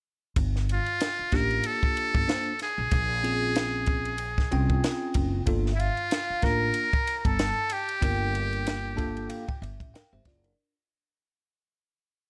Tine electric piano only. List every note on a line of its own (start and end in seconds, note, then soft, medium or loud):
1.32 2.22 A#3 medium
1.32 2.23 D4 medium
1.32 2.23 F4 medium
1.32 2.23 G4 medium
2.28 2.51 A#3 medium
2.28 2.52 D4 medium
2.28 2.52 F4 medium
2.28 2.52 C5 medium
3.23 4.14 C4 medium
3.23 4.14 C#4 medium
3.23 4.14 F4 medium
3.23 4.14 G#4 medium
4.51 5.42 C4 medium
4.51 5.42 C#4 medium
4.51 5.42 F4 medium
4.51 5.42 G5 medium
5.46 5.70 A#3 medium
5.46 5.71 D4 medium
5.46 5.71 F4 medium
5.46 5.71 A4 medium
6.42 6.89 A#3 medium
6.42 6.89 D4 medium
6.42 6.89 F4 medium
6.42 6.90 A#4 medium
8.01 8.92 A#3 medium
8.01 8.92 D4 medium
8.01 8.92 F4 medium
8.01 8.93 A#4 medium
8.96 9.44 A#3 medium
8.96 9.44 D4 medium
8.96 9.44 F4 medium
8.96 9.44 A4 loud
8.96 9.27 A5 medium
9.29 9.47 F5 medium
9.48 9.61 G5 medium
9.62 9.92 E5 medium
9.94 10.12 A#4 medium
9.94 10.11 F5 medium
9.94 10.11 G5 medium
10.13 10.26 G4 medium
10.13 10.25 C5 medium
10.13 10.25 E5 medium
10.27 10.44 F4 medium
10.27 10.56 D5 medium
10.44 10.75 D4 soft
10.44 10.74 A#4 medium